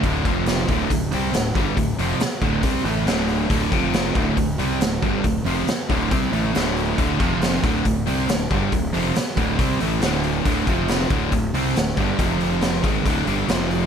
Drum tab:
HH |oooooooo|oooooooo|oooooooo|oooooooo|
SD |--o---o-|--o---o-|--o---o-|--o---o-|
BD |oo-oo--o|o--oo---|oo-oo--o|o--oo---|

HH |oooooooo|oooooooo|oooooooo|oooooooo|
SD |--o---o-|--o---o-|--o---o-|--o---o-|
BD |oo-oo--o|o--oo---|oo-oo--o|o--oo---|